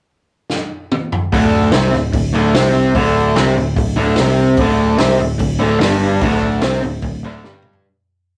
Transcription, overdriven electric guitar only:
1.32 1.72 D2 loud
1.32 1.72 D3 loud
1.72 1.92 C3 medium
1.72 1.93 C4 medium
1.93 2.09 D2 medium
2.13 2.30 D2 medium
2.33 2.53 D2 medium
2.33 2.54 D3 loud
2.55 2.94 C3 medium
2.55 2.95 C4 loud
2.95 3.35 D2 loud
2.95 3.35 D3 loud
3.36 3.56 C3 medium
3.36 3.56 C4 medium
3.57 3.73 D2 medium
3.77 3.93 D2 medium
3.96 4.16 D2 loud
3.96 4.17 D3 loud
4.19 4.59 C3 medium
4.19 4.59 C4 loud
4.60 4.98 D2 loud
4.60 4.99 D3 loud
4.98 5.18 C3 medium
4.98 5.19 C4 loud
5.20 5.36 D2 medium
5.40 5.56 D2 medium
5.59 5.80 D2 medium
5.59 5.80 D3 loud
5.80 6.21 G2 loud
5.80 6.21 G3 loud
6.22 6.62 D2 loud
6.22 6.62 D3 loud
6.63 6.82 C3 medium
6.63 6.83 C4 loud
6.83 6.99 D2 medium
7.04 7.20 D2 medium
7.24 7.43 D2 medium
7.24 7.44 D3 medium
7.44 7.84 G2 medium
7.44 7.84 G3 loud

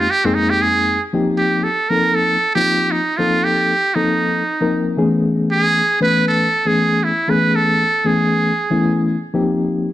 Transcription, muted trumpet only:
0.00 0.12 F4 loud
0.10 0.27 G4 loud
0.25 0.36 C4 medium
0.34 0.52 D#4 loud
0.50 0.63 G4 medium
0.62 1.02 G#4 loud
1.37 1.65 G4 medium
1.64 1.91 A4 medium
1.89 2.17 A#4 medium
2.15 2.54 A4 medium
2.55 2.93 G4 medium
2.91 3.19 D#4 medium
3.17 3.45 F4 medium
3.44 3.96 G4 medium
3.95 4.98 D#4 medium
5.51 5.98 G#4 loud
6.02 6.26 B4 medium
6.28 6.69 A4 medium
6.67 7.05 G#4 medium
7.04 7.32 E4 medium
7.30 7.57 B4 medium
7.56 8.08 A4 medium
8.06 9.09 G#4 medium

